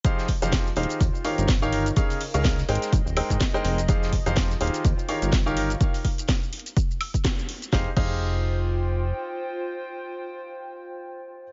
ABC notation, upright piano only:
X:1
M:4/4
L:1/16
Q:"Swing 16ths" 1/4=125
K:Fm
V:1 name="Upright piano"
[F,EGAcf]2 z [F,EGAcf]2 z [E,EGAcf]2 z2 [E,EGBdf]2 z [E,EGBdf]2 z | [D,EABdf]2 z [D,EABdf]2 z [A,EABcg]2 z2 [A,EABcg]2 z [A,EABcg]2 z | [F,EGAcf]2 z [F,EGAcf]2 z [E,EGAcf]2 z2 [E,EGBdf]2 z [E,EGBdf]2 z | z16 |
[EGAcf] z [EGAcf]12- [EGAcf]2- | [EGAcf]16 |]